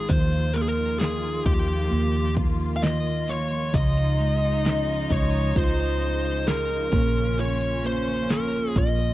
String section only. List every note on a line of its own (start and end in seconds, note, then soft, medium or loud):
0.00 3.70 D#3 medium
0.00 9.14 F4 medium
0.11 3.71 F3 medium
0.11 3.71 A#3 medium
3.74 9.14 C#3 medium
3.74 9.14 F3 medium
3.74 6.90 G#3 medium
6.92 9.14 A#3 medium